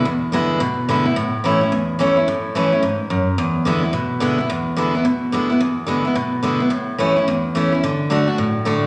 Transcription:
0.05 E2
0.32 D3 G#3 B3 E4
0.60 B2
0.89 D3 G#3 B3 E4
1.06 B3 E4
1.16 A2
1.44 E3 A3 C#4 E4
1.61 C#4 E4
1.72 E2
1.99 E3 A3 C#4 E4
2.17 C#4 E4
2.28 A2
2.55 E3 A3 C#4 E4
2.73 C#4 E4
2.82 G#2
3.10 F#2
3.38 E2
3.65 D3 G#3 B3 E4
3.83 B3 E4
3.93 B2
4.20 D3 G#3 B3 E4
4.38 B3 E4
4.50 E2
4.76 D3 G#3 B3 E4
4.95 B3 E4
5.05 B2
5.32 D3 G#3 B3 E4
5.50 B3 E4
5.61 E2
5.87 D3 G#3 B3 E4
6.05 B3 E4
6.15 B2
6.43 D3 G#3 B3 E4
6.60 B3 E4
6.70 A2
6.98 E3 A3 C#4 E4
7.16 C#4 E4
7.28 E2
7.55 E3 A3 C#4 E4
7.72 C#4 E4
7.83 D3
8.10 D3 A3 D4 F#4
8.28 D4 F#4
8.38 A2
8.65 D3 A3 D4 F#4

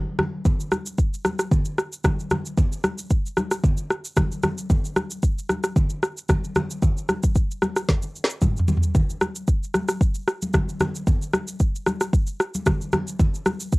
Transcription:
0.19 cross-stick, high conga, low conga
0.45 kick, low conga, shaker
0.60 shaker
0.72 cross-stick, high conga, shaker
0.86 shaker
0.98 kick, shaker
1.14 shaker
1.25 cross-stick, high conga, shaker
1.39 cross-stick, shaker
1.51 kick, low conga, shaker
1.65 shaker
1.78 cross-stick, shaker
1.93 shaker
2.04 kick, cross-stick, high conga, low conga, shaker
2.20 shaker
2.31 cross-stick, high conga, low conga, shaker
2.46 shaker
2.58 kick, low conga, shaker
2.72 shaker
2.84 cross-stick, high conga, shaker
2.98 shaker
3.10 kick, shaker
3.26 shaker
3.37 cross-stick, high conga, shaker
3.51 cross-stick, shaker
3.64 kick, low conga, shaker
3.77 shaker
3.91 cross-stick, shaker
4.05 shaker
4.17 kick, cross-stick, high conga, low conga, shaker
4.32 shaker
4.43 cross-stick, high conga, low conga, shaker
4.58 shaker
4.70 kick, low conga, shaker
4.85 shaker
4.96 cross-stick, high conga, shaker
5.11 shaker
5.23 kick, shaker
5.39 shaker
5.49 cross-stick, high conga, shaker
5.64 cross-stick, shaker
5.76 kick, low conga, shaker
5.90 shaker
6.03 cross-stick, shaker
6.17 shaker
6.29 kick, cross-stick, high conga, low conga, shaker
6.44 shaker
6.55 cross-stick, high conga, low conga, shaker
6.70 shaker
6.82 kick, low conga, shaker
6.97 shaker
7.09 cross-stick, high conga, shaker
7.23 kick, shaker
7.35 kick, shaker
7.51 shaker
7.62 cross-stick, high conga, shaker
7.76 cross-stick, shaker
7.89 kick, snare, low conga, shaker
8.02 shaker
8.16 shaker
8.24 snare
8.30 shaker
8.41 kick, mid tom, high conga, low conga, shaker
8.57 floor tom, shaker
8.68 high conga, low conga, shaker
8.77 floor tom
8.83 shaker
8.95 kick, low conga, shaker
9.10 shaker
9.21 cross-stick, high conga, shaker
9.35 shaker
9.48 kick, shaker
9.63 shaker
9.74 cross-stick, high conga, shaker
9.89 cross-stick, shaker
10.01 kick, shaker
10.14 shaker
10.28 cross-stick, shaker
10.42 high conga, shaker
10.54 kick, cross-stick, high conga, low conga, shaker
10.69 shaker
10.80 cross-stick, high conga, low conga, shaker
10.95 shaker
11.07 kick, low conga, shaker
11.22 shaker
11.34 cross-stick, high conga, shaker
11.48 shaker
11.60 kick, shaker
11.76 shaker
11.87 cross-stick, high conga, shaker
12.01 cross-stick, shaker
12.13 kick, shaker
12.27 shaker
12.40 cross-stick, shaker
12.54 high conga, shaker
12.66 kick, cross-stick, high conga, low conga, shaker
12.81 shaker
12.92 cross-stick, high conga, low conga, shaker
13.07 shaker
13.19 kick, low conga, shaker
13.34 shaker
13.46 cross-stick, high conga, shaker
13.60 shaker
13.72 kick, shaker

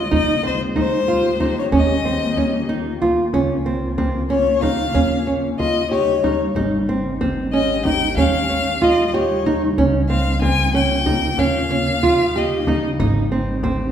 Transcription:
Already playing: G#3
0.11 D#2 D#3 A#3 D#4 G4 D#5, frame drum
0.43 C4 C5
0.76 D#4 C5, frame drum
1.08 F4
1.40 D#4, frame drum
1.59 C#5
1.72 D#2 C#4 F4 D#5, frame drum
2.05 C4, frame drum
2.37 C#4, frame drum
2.69 D#4
3.02 F4, frame drum
3.33 C#2 C#3 A#3 C#4 F4, frame drum
3.66 C4
3.98 C4, frame drum
4.30 C#4 C#5
4.61 D#4 F5, frame drum
4.94 D#2 G3 C#4 D#4, frame drum
5.27 C#4
5.59 F4 D#5, frame drum
5.90 G4 C#5
6.24 D#4, frame drum
6.55 G#1 D#3 G#3 D#4 G4, frame drum
6.89 C4
7.21 C4, frame drum
7.53 C#4 D#5
7.85 D#4 G5, frame drum
8.17 D#2 C#3 G3 C#4 D#4 F5, frame drum
8.49 C#4, frame drum
8.82 F4 D#5, frame drum
9.13 G4 C#5, frame drum
9.46 D#4, frame drum
9.78 C#2 A#3 C#4 F4, frame drum
10.09 C4 F5
10.41 C4 G#5, frame drum
10.74 C#4 G5
11.06 D#4, frame drum
11.38 D#2 C#3 G3 C#4 D#4 F5, frame drum
11.71 C#4
12.03 F4, frame drum
12.36 G4 D#5
12.67 D#4, frame drum
12.99 G#1 D#3 G#3 D#4 G4, frame drum
13.32 C4
13.63 C4, frame drum

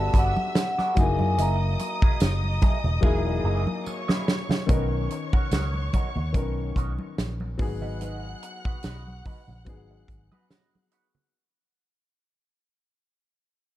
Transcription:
Already playing: G3 B3 D4 F#4 A4 E5 A5 E6
0.14 G1 B3 F#4 A4 D5, kick, closed hi-hat, muted conga
0.18 F#5
0.37 muted clean electric guitar stroke, high conga
0.55 muted clean electric guitar stroke, snare, closed hi-hat, tambourine, muted conga
0.59 F#5
0.78 B3 F#4 A4 D5, snare, high conga
0.95 F#1 F#3 G#3 D#4 E4 G#4 D#5 D#6, muted clean electric guitar stroke, kick, closed hi-hat, muted conga
1.00 A#3 G#5
1.19 F#2, muted clean electric guitar stroke, low conga
1.38 F#1 A#3 E4 G#4 D#5 A#5, closed hi-hat, muted conga
1.79 muted clean electric guitar stroke, closed hi-hat, muted conga
2.02 A#3 E4 G#4 D#5, kick
2.20 F#1, snare, closed hi-hat, tambourine, muted conga
2.44 high conga
2.62 A#3 E4 G#4 D#5, kick, closed hi-hat, muted conga, high conga
2.84 E1, muted clean electric guitar stroke, low conga
3.01 E1 F#3 G#3 A#3 D#4 E4 G#4, kick, muted conga
3.27 muted clean electric guitar stroke
3.44 F#1 A#3 E4 G#4 D#5
3.67 muted clean electric guitar stroke, high conga
3.85 C#5 C#6, muted clean electric guitar stroke, tambourine, muted conga
4.08 A#3 E4 G#4 D#5, snare, high conga
4.27 muted clean electric guitar stroke, snare
4.49 muted clean electric guitar stroke, snare, low conga
4.67 B1 D#3 B3 C#4 F#4 A#4 C#5 D#5 C#6, kick, closed hi-hat
4.92 muted clean electric guitar stroke
5.11 muted clean electric guitar stroke, closed hi-hat
5.33 C#4 F#4 A#4 F#5, kick
5.51 C#2 C#4 F#4 A#4 D#5, snare, closed hi-hat, tambourine, muted conga
5.74 muted clean electric guitar stroke, high conga
5.93 C#4 F#4 A#4 D#5, kick, closed hi-hat, muted conga, high conga, low conga
6.16 D#2, muted clean electric guitar stroke, low conga
6.33 B1 D#3 B3 C#4 A#4, muted clean electric guitar stroke, kick, closed hi-hat, muted conga
6.76 B1 C#4 F#4 A#4 D#5, kick, closed hi-hat, muted conga
6.99 muted clean electric guitar stroke, high conga
7.18 A#1, muted clean electric guitar stroke, snare, closed hi-hat, tambourine
7.40 muted clean electric guitar stroke, high conga
7.58 G#1 F#3 B3 D#4 G#4 F#5 F#6, kick, open hi-hat, muted conga
7.81 D#4 F#4 B4 D#5, low conga
8.01 D#4 F#4 B4 D#5, closed hi-hat, muted conga
8.24 muted clean electric guitar stroke
8.43 muted clean electric guitar stroke, closed hi-hat
8.65 D#4 F#4 B4 F#5, kick
8.83 B1 D#4 F#4 B4 D#5, snare, closed hi-hat, tambourine, muted conga
9.07 muted clean electric guitar stroke, high conga
9.25 D#4 F#4 B4 D#5, kick, open hi-hat, high conga, low conga
9.48 A#1, muted clean electric guitar stroke, low conga
9.65 F#3 B3 D#4 G#4, muted clean electric guitar stroke, kick, closed hi-hat
9.91 muted clean electric guitar stroke
10.08 G#1, kick, closed hi-hat
10.32 D#4 F#4 B4 D#5, high conga
10.51 D#4 F#4 B4 D#5, snare, closed hi-hat, tambourine, muted conga
10.74 muted clean electric guitar stroke, high conga
10.91 D#4 F#4 B4 F#5, closed hi-hat
11.15 muted clean electric guitar stroke, low conga

